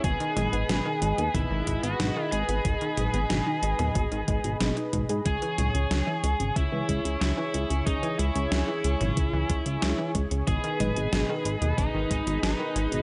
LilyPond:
<<
  \new Staff \with { instrumentName = "Analog synth pad" } { \time 4/4 \key cis \minor \tempo 4 = 92 << { <b' dis'' b''>1~ | <b' dis'' b''>1 | <cis'' gis'' cis'''>1~ | <cis'' gis'' cis'''>1 |
<b' dis'' b''>1 | } \\ { gis'1~ | gis'1 | gis'1~ | gis'1~ |
gis'1 | } >> }
  \new Staff \with { instrumentName = "Lead electric guitar" } { \time 4/4 \key cis \minor gis'2 e'8. fis'8. gis'8~ | gis'2. r4 | gis'2 e'4 e'4 | dis'8 e'2. r8 |
gis'2 dis'4 dis'4 | }
  \new Staff \with { instrumentName = "Synth arpeggio sound" } { \clef bass \time 4/4 \key cis \minor b,16 dis16 gis16 b16 b,16 dis16 gis16 b16 b,16 dis16 gis16 b16 b,16 dis16 gis16 b16 | b,16 dis16 gis16 b16 b,16 dis16 gis16 b16 b,16 dis16 gis16 b,16 b,16 dis'16 b,16 gis'16 | cis16 e16 gis16 cis16 cis16 e16 gis16 cis16 cis16 e16 gis16 cis16 cis16 e16 gis16 cis16 | cis16 e16 gis16 cis16 cis16 e16 gis16 cis16 cis16 e16 gis16 cis16 cis16 e16 gis16 cis16 |
b,16 dis16 gis16 b,16 b,16 dis16 gis16 b,16 b,16 dis16 gis16 b,16 b,16 dis16 gis16 b,16 | }
  \new Staff \with { instrumentName = "Analog synth bass" } { \clef bass \time 4/4 \key cis \minor gis,,16 r16 gis,,16 gis,,16 gis,,16 r16 gis,,16 dis,16 gis,,16 gis,,16 gis,,16 gis,,16 gis,,16 r16 gis,,16 gis,,16 | gis,,16 r16 gis,,16 gis,,16 gis,,16 r16 gis,,16 dis,16 gis,,16 gis,,16 gis,,16 gis,,16 gis,,16 r16 gis,,16 gis,16 | cis,16 r16 cis,16 cis,16 cis,16 r16 cis,16 gis,,16 cis,16 cis,16 cis,16 cis,16 cis,16 r16 cis,16 cis,16 | cis,16 r16 cis,16 cis,16 cis,16 r16 cis,16 gis,,16 cis,16 cis,16 cis,16 cis,16 cis,16 r16 cis,16 cis,16 |
gis,,16 r16 gis,,16 gis,,16 gis,,16 r16 gis,,16 dis,16 gis,,16 gis,,16 gis,,16 gis,,16 gis,,16 r16 gis,,16 gis,,16 | }
  \new DrumStaff \with { instrumentName = "Drums" } \drummode { \time 4/4 <hh bd>16 hh16 <hh toml>16 hh16 <hh sn>8 hh16 hh16 <hh bd>8 <hh bd>16 hh16 <hh sn>8 hh16 hh16 | <hh bd>16 hh16 <hh toml>16 hh16 <hh sn>8 hh16 <hh toml>16 <hh bd>16 hh16 <hh bd>16 hh16 <hh sn>16 hh16 <hh bd>16 hh16 | <hh bd>16 hh16 <hh toml>16 hh16 <hh sn>8 hh16 hh16 <hh bd>8 <hh bd>16 hh16 <hh sn>8 hh16 hh16 | <hh bd>16 hh16 hh16 hh16 <hh sn>8 hh16 <hh toml>16 <hh bd>8 <hh bd>16 hh16 <hh sn>8 <hh bd>16 hh16 |
<hh bd>16 hh16 <hh toml>16 hh16 <hh sn>8 hh16 hh16 <hh bd>8 <hh bd>16 hh16 <hh sn>8 hh16 hh16 | }
>>